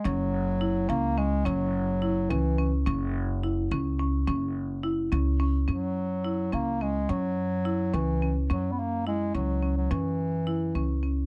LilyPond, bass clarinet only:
\new Staff \with { instrumentName = "Bass clarinet" } { \clef bass \time 5/8 \key fis \mixolydian \tempo 4 = 107 fis4. ais8 gis8 | fis4. e8. r16 | r2 r8 | r2 r8 |
fis4. ais8 gis8 | fis4. e8. r16 | fis16. b32 ais8 gis8 fis8. fis16 | e2 r8 | }